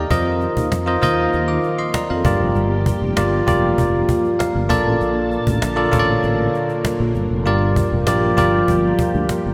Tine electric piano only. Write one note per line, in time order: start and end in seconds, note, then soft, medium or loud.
0.00 0.13 G4 medium
0.00 0.12 A4 medium
0.00 0.11 A#4 medium
0.00 0.25 D5 medium
0.00 0.11 D#5 medium
0.00 0.13 F5 medium
0.00 0.13 G5 medium
0.00 0.25 A#5 medium
0.10 0.67 F4 medium
0.10 0.67 A#4 medium
0.10 0.67 C5 medium
0.10 0.67 D#5 medium
0.86 0.98 F4 medium
0.86 0.98 A#4 medium
0.86 0.99 C5 medium
0.86 0.99 D#5 medium
1.02 1.92 F4 medium
1.02 1.33 A#4 medium
1.02 1.33 C5 medium
1.02 1.33 D#5 medium
1.48 1.78 F5 medium
1.48 1.77 D6 medium
1.78 1.94 D#5 medium
1.78 1.93 C6 medium
1.94 2.09 D5 medium
1.94 2.09 A#5 medium
2.10 2.39 A4 medium
2.10 2.39 F5 medium
2.25 3.13 G2 medium
2.25 2.98 F4 medium
2.25 2.99 G4 medium
2.25 2.99 A#4 medium
2.25 2.99 D5 medium
3.16 3.39 F4 medium
3.16 3.40 G4 medium
3.16 3.40 A#4 medium
3.16 3.40 D5 medium
3.47 4.38 F4 medium
3.47 4.38 G4 medium
3.47 4.38 A#4 medium
3.47 4.38 D5 medium
4.39 4.68 F5 medium
4.69 5.58 A#2 medium
4.69 5.55 F4 medium
4.69 5.55 A4 medium
4.69 5.56 A#4 medium
4.69 5.56 D5 medium
4.69 4.98 A5 medium
5.76 5.88 F4 medium
5.76 5.88 A4 medium
5.76 5.88 A#4 medium
5.76 5.88 D5 medium
5.92 6.82 F4 medium
5.92 6.83 A4 medium
5.92 6.83 A#4 medium
5.92 5.99 C#5 medium
6.00 6.86 D5 medium
7.46 8.34 G2 medium
7.46 7.91 F4 medium
7.46 7.91 G4 medium
7.46 7.91 A#4 medium
7.46 7.91 D5 medium
8.07 8.29 F4 medium
8.07 8.29 G4 medium
8.07 8.30 A#4 medium
8.07 8.30 D5 medium
8.37 9.28 F4 medium
8.37 9.28 G4 medium
8.37 9.28 A#4 medium
8.37 9.28 D5 medium